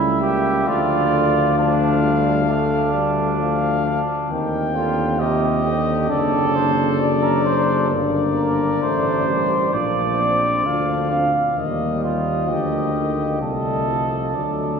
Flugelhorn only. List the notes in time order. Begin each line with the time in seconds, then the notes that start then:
Already playing: E4
0.21 G4
0.67 F4
1.58 D4
2.49 D4
3.85 D4
4.76 F4
5.20 G4
6.08 A4
7.23 A#4
7.45 C5
8.36 A#4
8.82 C5
9.73 D5
11.12 F5
12.03 F4
12.49 G4
13.41 A4